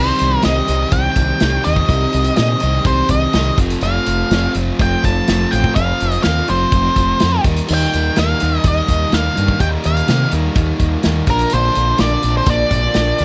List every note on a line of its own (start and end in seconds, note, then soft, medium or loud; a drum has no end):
0.00 0.11 C2 loud
0.00 0.42 C3 medium
0.00 0.42 D#3 medium
0.00 0.43 G3 loud
0.00 0.43 C4 medium
0.00 0.44 G4 loud
0.00 0.44 C5 medium
0.18 0.36 C2 medium
0.18 closed hi-hat medium
0.42 0.60 C2 medium
0.42 0.66 C3 medium
0.42 0.67 D#3 medium
0.42 0.67 G3 medium
0.42 0.68 C4 medium
0.42 0.68 G4 loud
0.42 0.89 D#5 medium
0.42 snare loud
0.42 closed hi-hat medium
0.67 0.84 C2 medium
0.67 0.90 C3 medium
0.67 0.91 D#3 medium
0.67 0.91 G3 medium
0.67 0.92 C4 medium
0.67 0.92 G4 medium
0.67 closed hi-hat medium
0.91 1.08 C2 medium
0.91 1.40 C3 medium
0.91 1.40 D#3 medium
0.91 1.41 G3 medium
0.91 1.41 C4 medium
0.91 1.41 G4 medium
0.91 1.67 G5 loud
0.91 kick loud
0.91 closed hi-hat medium
1.16 1.32 C2 medium
1.16 kick medium
1.16 snare soft
1.16 closed hi-hat medium
1.40 1.57 C2 medium
1.40 1.64 C3 medium
1.40 1.65 D#3 medium
1.40 1.65 G3 medium
1.40 1.66 C4 medium
1.40 1.66 G4 medium
1.40 snare loud
1.40 closed hi-hat medium
1.64 1.81 D#2 medium
1.64 1.88 C3 medium
1.64 1.89 D#3 medium
1.64 1.89 G3 medium
1.64 1.90 C4 medium
1.64 1.89 G4 medium
1.64 2.36 D#5 medium
1.64 closed hi-hat medium
1.76 kick medium
1.89 2.05 C2 loud
1.89 2.36 C3 medium
1.89 2.36 D#3 medium
1.89 2.37 G3 loud
1.89 2.38 C4 loud
1.89 2.37 G4 loud
1.89 kick medium
1.89 closed hi-hat medium
2.13 2.29 C2 medium
2.13 closed hi-hat medium
2.24 closed hi-hat medium
2.36 2.54 A#2 medium
2.36 2.59 C3 medium
2.36 2.59 D#3 medium
2.36 2.60 G3 medium
2.36 2.61 C4 medium
2.36 2.60 G4 medium
2.36 2.86 D#5 medium
2.36 snare loud
2.36 closed hi-hat medium
2.60 2.78 C2 medium
2.60 2.83 C3 medium
2.60 2.84 D#3 medium
2.60 2.84 G3 medium
2.60 2.85 C4 medium
2.60 2.85 G4 loud
2.60 closed hi-hat medium
2.85 3.01 C2 medium
2.85 3.32 C3 medium
2.85 3.33 D#3 medium
2.85 3.34 G3 medium
2.85 3.34 C4 loud
2.85 3.34 G4 loud
2.85 3.11 C5 medium
2.85 kick loud
2.85 closed hi-hat medium
3.09 3.25 C2 medium
3.09 3.56 D#5 medium
3.09 kick medium
3.09 closed hi-hat medium
3.33 3.50 C2 medium
3.33 3.57 C3 medium
3.33 3.57 D#3 medium
3.33 3.57 G3 medium
3.33 3.59 C4 medium
3.33 3.57 G4 medium
3.33 snare loud
3.33 closed hi-hat medium
3.58 3.74 F1 medium
3.58 3.82 F3 medium
3.58 3.83 A3 medium
3.58 3.83 C4 loud
3.58 3.84 F4 loud
3.58 kick loud
3.58 closed hi-hat medium
3.70 closed hi-hat medium
3.81 3.98 F1 loud
3.81 4.31 F3 medium
3.81 4.31 A3 loud
3.81 4.32 C4 medium
3.81 4.32 F4 loud
3.81 4.51 F5 loud
3.81 closed hi-hat medium
4.06 4.22 F1 medium
4.06 closed hi-hat medium
4.31 4.46 F1 medium
4.31 4.56 F3 medium
4.31 4.56 A3 medium
4.31 4.56 C4 medium
4.31 4.57 F4 medium
4.31 snare loud
4.31 closed hi-hat medium
4.55 4.70 F1 medium
4.55 4.80 F3 medium
4.55 4.79 A3 medium
4.55 4.79 C4 medium
4.55 4.81 F4 medium
4.55 closed hi-hat medium
4.79 4.95 F1 medium
4.79 5.28 F3 medium
4.79 5.27 A3 medium
4.79 5.28 C4 medium
4.79 5.29 F4 loud
4.79 5.05 G5 loud
4.79 kick loud
4.79 closed hi-hat medium
5.04 5.19 F1 medium
5.04 5.54 A5 loud
5.04 kick medium
5.04 closed hi-hat medium
5.28 5.44 F1 medium
5.28 5.52 F3 medium
5.28 5.51 A3 medium
5.28 5.52 C4 medium
5.28 5.53 F4 loud
5.28 snare loud
5.28 closed hi-hat medium
5.51 5.68 A1 medium
5.51 5.76 F3 medium
5.51 5.76 A3 medium
5.51 5.76 C4 medium
5.51 5.77 F4 medium
5.51 5.75 G5 loud
5.51 closed hi-hat medium
5.64 kick medium
5.75 5.92 F1 loud
5.75 6.24 F3 loud
5.75 6.23 A3 loud
5.75 6.24 C4 loud
5.75 6.26 F4 loud
5.75 6.20 F5 loud
5.75 kick loud
5.75 closed hi-hat medium
6.00 6.17 F1 medium
6.00 closed hi-hat medium
6.12 closed hi-hat medium
6.23 6.41 D#2 medium
6.23 6.49 F3 medium
6.23 6.49 A3 medium
6.23 6.50 C4 medium
6.23 6.51 F4 medium
6.23 6.49 F5 medium
6.23 snare loud
6.23 closed hi-hat medium
6.48 6.64 F1 medium
6.48 6.73 F3 medium
6.48 6.73 A3 medium
6.48 6.73 C4 medium
6.48 6.74 F4 medium
6.48 7.41 C5 medium
6.48 closed hi-hat medium
6.72 6.88 F1 medium
6.72 7.20 F3 medium
6.72 7.20 A3 medium
6.72 7.21 C4 medium
6.72 7.21 F4 loud
6.72 kick loud
6.72 closed hi-hat medium
6.96 7.12 F1 medium
6.96 kick medium
6.96 snare soft
6.96 closed hi-hat medium
7.20 7.37 F2 medium
7.20 7.44 F3 medium
7.20 7.44 A3 medium
7.20 7.44 C4 medium
7.20 7.45 F4 medium
7.20 snare loud
7.20 closed hi-hat medium
7.44 7.60 D#2 medium
7.44 7.68 D#3 medium
7.44 7.68 G3 medium
7.44 7.68 A#3 medium
7.44 7.69 D#4 loud
7.44 kick loud
7.44 closed hi-hat medium
7.57 closed hi-hat medium
7.68 7.85 D#2 loud
7.68 8.17 D#3 medium
7.68 8.16 G3 medium
7.68 8.17 A#3 loud
7.68 8.17 D#4 loud
7.68 crash loud
7.74 8.19 G5 loud
7.93 8.09 D#2 medium
7.93 closed hi-hat medium
8.16 8.33 D#2 medium
8.16 8.40 D#3 medium
8.16 8.41 G3 medium
8.16 8.42 A#3 medium
8.16 8.41 D#4 loud
8.16 8.68 F5 medium
8.16 snare loud
8.16 closed hi-hat medium
8.40 8.57 D#2 medium
8.40 8.64 D#3 medium
8.40 8.64 G3 medium
8.40 8.65 A#3 medium
8.40 8.65 D#4 medium
8.40 closed hi-hat medium
8.64 8.80 D#2 medium
8.64 9.11 D#3 medium
8.64 9.11 G3 medium
8.64 9.12 A#3 loud
8.64 9.12 D#4 loud
8.64 9.16 D#5 medium
8.64 kick loud
8.64 closed hi-hat medium
8.88 9.04 D#2 medium
8.88 kick medium
8.88 closed hi-hat medium
9.12 9.28 D#2 medium
9.12 9.34 D#3 medium
9.12 9.34 G3 medium
9.12 9.36 A#3 medium
9.12 9.35 D#4 medium
9.12 9.61 F5 medium
9.12 snare loud
9.12 closed hi-hat medium
9.36 9.53 G2 medium
9.36 9.59 D#3 medium
9.36 9.59 G3 medium
9.36 9.60 A#3 loud
9.36 9.60 D#4 medium
9.36 closed hi-hat medium
9.48 kick medium
9.60 9.76 D#2 loud
9.60 10.06 D#3 medium
9.60 10.07 G3 loud
9.60 10.08 A#3 loud
9.60 10.07 D#4 loud
9.60 9.67 G5 loud
9.60 kick medium
9.60 closed hi-hat medium
9.84 10.01 D#2 medium
9.84 10.30 F5 medium
9.84 closed hi-hat medium
9.97 closed hi-hat medium
10.07 10.24 C3 medium
10.07 10.32 D#3 medium
10.07 10.32 G3 medium
10.07 10.33 A#3 medium
10.07 10.33 D#4 loud
10.07 snare loud
10.07 closed hi-hat medium
10.32 10.48 D#2 medium
10.32 10.55 D#3 medium
10.32 10.55 G3 medium
10.32 10.56 A#3 medium
10.32 10.56 D#4 loud
10.32 closed hi-hat medium
10.55 10.71 D#2 medium
10.55 11.02 D#3 loud
10.55 11.03 G3 medium
10.55 11.04 A#3 medium
10.55 11.04 D#4 medium
10.55 kick loud
10.55 closed hi-hat medium
10.79 10.95 D#2 medium
10.79 kick medium
10.79 closed hi-hat medium
11.03 11.21 D#2 loud
11.03 11.27 D#3 medium
11.03 11.27 G3 medium
11.03 11.28 A#3 medium
11.03 11.27 D#4 medium
11.03 snare loud
11.03 closed hi-hat medium
11.27 11.43 A#1 medium
11.27 11.52 A#2 medium
11.27 11.52 D3 medium
11.27 11.53 F3 loud
11.27 11.53 A#3 loud
11.27 11.54 D4 loud
11.27 11.54 A#4 medium
11.27 kick loud
11.27 closed hi-hat medium
11.39 closed hi-hat medium
11.50 11.69 A#1 loud
11.50 12.01 A#2 loud
11.50 12.00 D3 loud
11.50 12.02 F3 loud
11.50 12.02 A#3 loud
11.50 11.97 C5 loud
11.50 closed hi-hat medium
11.54 12.02 D4 loud
11.75 11.92 A#1 medium
11.75 closed hi-hat medium
11.98 12.15 A#1 medium
11.98 12.22 A#2 medium
11.98 12.22 D3 medium
11.98 12.24 F3 medium
11.98 12.24 A#3 medium
11.98 12.23 D4 loud
11.98 12.34 D5 loud
11.98 snare loud
11.98 closed hi-hat medium
12.23 12.39 A#1 medium
12.23 12.47 A#2 medium
12.23 12.48 D3 medium
12.23 12.48 F3 medium
12.23 12.49 A#3 medium
12.23 12.49 D4 medium
12.23 closed hi-hat medium
12.37 12.50 C5 medium
12.46 12.63 A#1 medium
12.46 12.94 A#2 medium
12.46 12.95 D3 medium
12.46 12.95 F3 loud
12.46 13.25 D5 medium
12.46 kick loud
12.46 closed hi-hat medium
12.50 12.96 A#3 loud
12.50 12.96 D4 loud
12.71 12.87 A#1 medium
12.71 kick medium
12.71 closed hi-hat medium
12.94 13.11 A#1 medium
12.94 13.18 A#2 medium
12.94 13.18 D3 medium
12.94 13.19 F3 medium
12.94 13.19 A#3 medium
12.94 13.20 D4 loud
12.94 snare loud
12.94 closed hi-hat medium
13.18 13.25 D2 medium
13.18 13.25 A#2 medium
13.18 13.25 D3 medium
13.18 13.25 F3 medium
13.18 13.25 A#3 medium
13.18 13.25 D4 loud
13.18 closed hi-hat medium